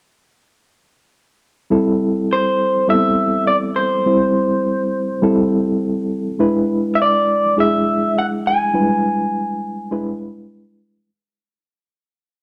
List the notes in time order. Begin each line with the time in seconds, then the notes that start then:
1.70 G3 C4 E4 A4
2.33 C5
2.88 G3 B3 E4 A4 E5
2.95 C4
3.47 D5
3.76 C5
4.06 G3 C4 E4 C5
5.22 G3 C4 E4 A4
6.39 G#3 D4 E4 B4
6.95 E5
7.02 D5
7.57 G#3 D4 E4 G#4 E5
8.19 F#5
8.47 G#5
8.74 G3 D4 E4 B4
8.80 G#3
9.91 G#3 D4 E4 B4